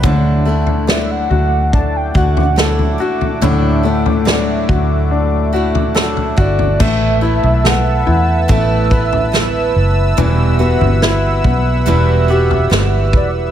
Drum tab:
CC |----------------|----------------|x---------------|----------------|
SD |----o-------o---|----o-------o---|----o-------o---|----o-------o---|
FT |o--o--o----o-o-o|o--o--o----o-o-o|o--o--o-o--o----|o--o--o-o--o----|
BD |o-------o-o-----|------o-------o-|o-------o-o-----|------o-------o-|